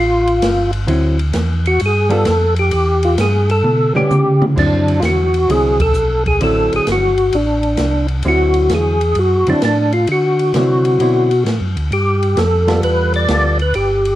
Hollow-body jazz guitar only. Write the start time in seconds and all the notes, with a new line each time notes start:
0.87 D3 F#3 C4 E4
2.09 G3 B3 F4 A4
3.95 G3 B3 C#4
4.56 D3 F#3 C4 E4
5.49 D3 F#3 C4 E4
6.41 D3 F#3 C4 E4
8.25 D3 F#3 C4 E4
9.48 D3 F#3 C4 E4
10.55 D3 F#3 C4 E4
11.01 D3 F#3 C4 E4
12.67 G3 B3 F4 A4
13.29 G3 B3 F4 A4